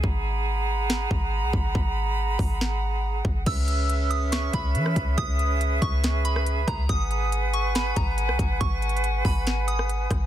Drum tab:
CC |------------------------------------------------|------------------------------------------------|x-----------------------------------------------|------------------------------------------------|
HH |------------------------------------------------|------------------o-----------------------------|x-----x-----x-----x-----x-----x-----x-----x-----|x-----x-----x-----x-----x-----x-----x-----x-----|
SD |------------------------o-----------------------|------------------------o-----------------------|------------------------o--------------r--------|------------------------o--------r--------r-----|
BD |o-----------------------------o-----------o-----|o-----------------o-----------------------o-----|o-----------------------------o-----------o-----|o-----------------o-----------------------o-----|

CC |------------------------------------------------|------------------------------------------------|
HH |x-----x-----x-----x-----x-----x-----x-----x-----|x-----x-x-x-x-----o-----x-----x-----x-----x-----|
SD |------------------------o--------------r--------|------------------------o--------r--------r-----|
BD |o-----------------------------o-----------o-----|o-----------------o-----------------------o-----|